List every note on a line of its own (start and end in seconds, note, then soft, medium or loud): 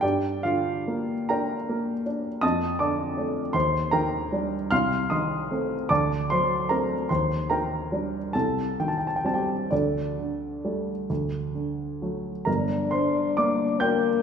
0.01 2.39 G2 soft
0.01 0.41 G4 medium
0.01 0.41 D5 soft
0.01 0.43 G5 medium
0.43 1.14 D3 soft
0.43 1.26 F4 soft
0.43 1.30 F5 medium
0.88 1.54 A#3 soft
1.29 1.91 D4 soft
1.29 2.02 A#4 soft
1.29 2.02 G5 medium
1.29 2.05 A#5 medium
1.69 2.28 A#3 soft
2.06 2.43 D4 soft
2.41 3.51 F2 medium
2.41 2.77 D#5 medium
2.41 2.77 A5 medium
2.41 2.79 D#6 medium
2.79 3.40 D3 soft
2.79 3.51 D5 soft
2.79 3.51 A5 soft
2.79 3.54 D6 medium
3.17 3.51 A3 soft
3.17 3.51 D4 soft
3.53 4.67 D#2 medium
3.53 3.90 C5 medium
3.53 3.92 C6 medium
3.91 4.55 D#3 soft
3.91 4.67 A#4 medium
3.91 4.67 G5 medium
3.91 4.70 A#5 medium
4.32 4.67 G3 soft
4.32 4.67 D4 soft
4.71 5.87 C2 medium
4.71 5.08 F5 medium
4.71 5.08 C6 medium
4.71 5.10 F6 medium
5.10 5.74 D#3 soft
5.10 5.86 D#5 soft
5.10 5.86 C6 soft
5.10 5.89 D#6 medium
5.51 5.86 A3 soft
5.51 5.86 C4 soft
5.89 7.06 D2 medium
5.89 6.27 D5 medium
5.89 6.27 A5 medium
5.89 6.29 D6 medium
6.30 6.94 F#3 soft
6.30 6.67 C5 medium
6.30 6.70 C6 medium
6.69 7.06 A3 soft
6.69 7.06 C4 soft
6.69 7.07 A#4 medium
6.69 7.09 A#5 medium
7.09 8.31 D#2 medium
7.09 7.47 C5 soft
7.09 7.49 C6 medium
7.50 8.17 D#3 soft
7.50 8.30 A#4 medium
7.50 8.30 G5 medium
7.50 8.34 A#5 medium
7.92 8.30 G3 soft
7.92 8.31 D4 soft
8.33 9.67 C2 soft
8.33 8.75 A4 soft
8.33 8.77 A5 medium
8.80 9.53 D#3 soft
8.80 8.88 G5 medium
8.88 8.97 A5 medium
8.98 9.06 G5 medium
9.07 9.16 A5 medium
9.16 9.25 G5 soft
9.24 9.67 G3 soft
9.24 9.67 C4 soft
9.24 9.35 A5 medium
9.34 9.69 G4 soft
9.34 9.70 G5 medium
9.71 11.06 D2 soft
9.71 11.06 D4 soft
9.71 11.06 A4 soft
9.71 11.09 D5 medium
10.19 10.92 D3 soft
10.65 11.06 G3 soft
10.65 11.06 A3 soft
11.10 12.43 D2 soft
11.55 12.29 D3 soft
12.02 12.43 F#3 soft
12.02 12.43 A3 soft
12.45 14.22 G1 soft
12.45 13.83 D4 medium
12.45 12.88 A#4 soft
12.45 12.90 A#5 medium
12.91 13.65 D3 soft
12.91 13.35 C5 soft
12.91 13.37 C6 medium
13.37 14.07 A#3 soft
13.37 13.79 D5 soft
13.37 13.81 D6 medium
13.80 14.22 A#3 medium
13.80 14.22 D4 soft
13.80 14.22 G5 medium
13.80 14.22 G6 medium